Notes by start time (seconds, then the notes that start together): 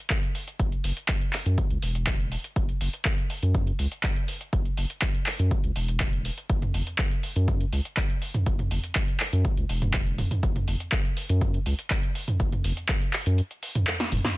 0.10 kick, clap, closed hi-hat
0.23 closed hi-hat
0.35 open hi-hat
0.48 closed hi-hat
0.59 F#1, kick, closed hi-hat
0.72 closed hi-hat
0.84 F#1, open hi-hat
0.97 closed hi-hat
1.08 kick, clap, closed hi-hat
1.21 closed hi-hat
1.33 clap, open hi-hat
1.46 F#2, closed hi-hat
1.58 kick, closed hi-hat
1.70 C#2, closed hi-hat
1.82 E1, open hi-hat
1.95 closed hi-hat
2.07 kick, clap, closed hi-hat
2.20 closed hi-hat
2.32 open hi-hat
2.44 closed hi-hat
2.56 F#1, kick, closed hi-hat
2.69 closed hi-hat
2.81 F#1, open hi-hat
2.93 closed hi-hat
3.05 kick, clap, closed hi-hat
3.18 closed hi-hat
3.30 open hi-hat
3.43 F#2, closed hi-hat
3.54 kick, closed hi-hat
3.67 closed hi-hat
3.79 C#2, open hi-hat
3.92 closed hi-hat
4.03 kick, clap, closed hi-hat
4.16 closed hi-hat
4.28 open hi-hat
4.41 closed hi-hat
4.53 F#1, kick, closed hi-hat
4.65 closed hi-hat
4.77 F#1, open hi-hat
4.90 closed hi-hat
5.02 kick, clap, closed hi-hat
5.15 closed hi-hat
5.26 clap, open hi-hat
5.39 F#2, closed hi-hat
5.51 kick, closed hi-hat
5.64 C#2, closed hi-hat
5.76 E1, open hi-hat
5.88 closed hi-hat
6.00 kick, clap, closed hi-hat
6.13 closed hi-hat
6.25 open hi-hat
6.38 closed hi-hat
6.50 F#1, kick, closed hi-hat
6.62 closed hi-hat, mid tom
6.74 F#1, open hi-hat
6.87 closed hi-hat
6.98 kick, clap, closed hi-hat
7.11 closed hi-hat
7.23 open hi-hat
7.36 F#2, closed hi-hat
7.48 kick, closed hi-hat
7.61 closed hi-hat
7.73 C#2, open hi-hat
7.85 closed hi-hat
7.97 kick, clap, closed hi-hat
8.10 closed hi-hat
8.22 open hi-hat
8.34 closed hi-hat, mid tom
8.46 F#1, kick, closed hi-hat
8.59 closed hi-hat, mid tom
8.71 F#1, open hi-hat
8.84 closed hi-hat
8.95 kick, clap, closed hi-hat
9.08 closed hi-hat
9.20 clap, open hi-hat
9.33 F#2, closed hi-hat
9.45 kick, closed hi-hat
9.57 C#2, closed hi-hat
9.69 E1, open hi-hat
9.82 closed hi-hat, mid tom
9.94 kick, clap, closed hi-hat
10.07 closed hi-hat
10.18 mid tom, open hi-hat
10.31 closed hi-hat, mid tom
10.43 F#1, kick, closed hi-hat
10.56 closed hi-hat, mid tom
10.68 F#1, open hi-hat
10.80 closed hi-hat
10.92 kick, clap, closed hi-hat
11.05 closed hi-hat
11.17 open hi-hat
11.29 F#2, closed hi-hat
11.41 kick, closed hi-hat
11.54 closed hi-hat
11.66 C#2, open hi-hat
11.79 closed hi-hat
11.90 kick, clap, closed hi-hat
12.03 closed hi-hat
12.15 open hi-hat
12.28 closed hi-hat, mid tom
12.40 F#1, kick, closed hi-hat
12.52 closed hi-hat, mid tom
12.64 F#1, open hi-hat
12.77 closed hi-hat
12.89 kick, clap, closed hi-hat
13.02 closed hi-hat
13.13 clap, open hi-hat
13.26 F#2, closed hi-hat
13.38 closed hi-hat
13.51 closed hi-hat
13.63 open hi-hat
13.75 closed hi-hat, mid tom
13.87 clap, closed hi-hat
14.00 snare, closed hi-hat
14.12 E1, mid tom, open hi-hat
14.25 snare, closed hi-hat, mid tom